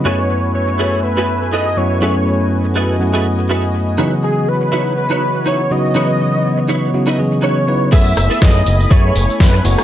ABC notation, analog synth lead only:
X:1
M:4/4
L:1/8
Q:"Swing 16ths" 1/4=122
K:F#dor
V:1 name="Analog synth lead"
c2 c2 B2 d c- | c3 z4 z | z G B2 B2 c d- | d4- d z c2 |
e2 d2 c2 B c |]